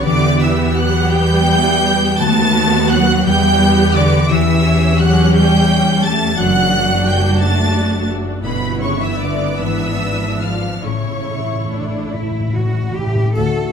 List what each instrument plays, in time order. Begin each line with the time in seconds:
Already playing: harp B3 B4
0.04 double bass section E2, cello section D3, harp E3, viola section B3 G4, violin section D5 D6
0.41 cello section E3, harp B4, violin section E5 E6
0.76 cello section F#3, harp G4, violin section F#5 F#6
1.12 cello section G3, harp B3, violin section G5 G6
1.49 harp A3
1.85 harp B3
2.18 double bass section D#2, harp D#3, cello section A3, viola section B3 F#4, violin section A5 A6
2.55 harp B3
2.89 cello section F#3, harp F#4 B4, violin section F#5 F#6
3.24 double bass section E2, harp E3, cello section G3, viola section B3 G4, violin section G5 G6
3.61 harp B3
3.95 cello section D3, harp G4 B4, violin section D5 D6
4.30 double bass section E2, cello section E3, harp E3, viola section C#4 G4, violin section E5 E6
4.66 harp C#5
4.99 cello section F#3, harp G4, violin section F#5 F#6
5.35 cello section G3, harp A3, violin section G5 G6
5.69 harp G3
6.03 cello section A3, harp A3, violin section A5 A6
6.38 double bass section F#1, harp F#2, cello section F#3, viola section D4 F#4, violin section F#5 F#6
6.73 harp D5
7.07 cello section G3, harp F#4, violin section G5 G6
7.40 cello section A3, harp A3, violin section A5 A6
7.75 harp G3
8.10 harp A3
8.43 double bass section G1, harp G2, cello section B2, viola section B3 E4, violin section B4 B5
8.81 cello section C#3, harp B3, violin section C#5 C#6
9.00 cello section E3, violin section E5 E6
9.19 cello section D3, harp E4 E5, violin section D5 D6
9.59 double bass section G#1, harp G#2, cello section E3, viola section D4, violin section E5 E6
10.01 harp B3
10.41 cello section F3, harp F4 D5, violin section F5 F6
10.84 double bass section A1, timpani A2, harp A2, cello section C#3, viola section A3 E4, violin section C#5 C#6
10.94 timpani A2
11.04 timpani A2
11.21 timpani A2
11.29 timpani A2, harp E5
11.38 timpani A2
11.47 timpani A2
11.56 timpani A2
11.65 timpani A2
11.71 timpani A2, cello section D4, harp E4
11.81 timpani A2
11.89 timpani A2
11.97 timpani A2
12.05 timpani A2
12.13 timpani A2, harp A3, cello section E4
12.22 timpani A2
12.30 timpani A2
12.39 timpani A2
12.48 timpani A2
12.54 timpani A2, harp G3, cello section F#4
12.65 timpani A2
12.73 timpani A2
12.82 timpani A2
12.90 timpani A2
12.95 timpani A2, harp A3, cello section G4
13.07 timpani A2
13.15 timpani A2
13.23 timpani A2
13.35 double bass section D2, harp D3, french horn section A3 F#4, cello section A4, triangle